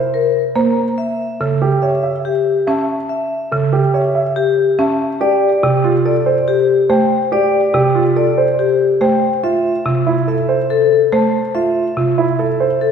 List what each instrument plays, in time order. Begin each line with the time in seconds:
Already playing: grand piano C5
0.14 vibraphone A#4
0.56 marimba A#3, grand piano C5, vibraphone A#5
0.98 vibraphone E5
1.40 marimba C#3, grand piano A4
1.62 grand piano G4
1.82 grand piano C#5, vibraphone E5
2.03 grand piano E5
2.25 vibraphone G4
2.67 marimba C#4, grand piano E5, vibraphone A5
3.09 vibraphone E5
3.52 marimba C#3, grand piano A4
3.73 grand piano G4
3.94 grand piano C#5, vibraphone E5
4.15 grand piano E5
4.36 vibraphone G4
4.79 marimba C#4, grand piano E5, vibraphone A5
5.21 grand piano G4, vibraphone D5
5.63 marimba C3, grand piano G4
5.84 grand piano F4
6.05 grand piano A4, vibraphone D5
6.26 grand piano C5
6.48 vibraphone G4
6.89 marimba A3, grand piano C5, vibraphone G5
7.32 grand piano G4, vibraphone D5
7.74 marimba C3, grand piano G4
7.95 grand piano F4
8.16 grand piano A4, vibraphone D5
8.38 grand piano C5
8.59 vibraphone G4
9.01 marimba A3, grand piano C5, vibraphone G5
9.43 grand piano F4, vibraphone E5
9.86 marimba C3, grand piano F4
10.07 grand piano E4
10.28 grand piano A4, vibraphone E5
10.49 grand piano C5
10.70 vibraphone A4
11.12 marimba A3, grand piano C5, vibraphone A5
11.55 grand piano F4, vibraphone E5
11.97 marimba C3, grand piano F4
12.18 grand piano E4
12.39 grand piano A4, vibraphone E5
12.60 grand piano C5
12.81 vibraphone A4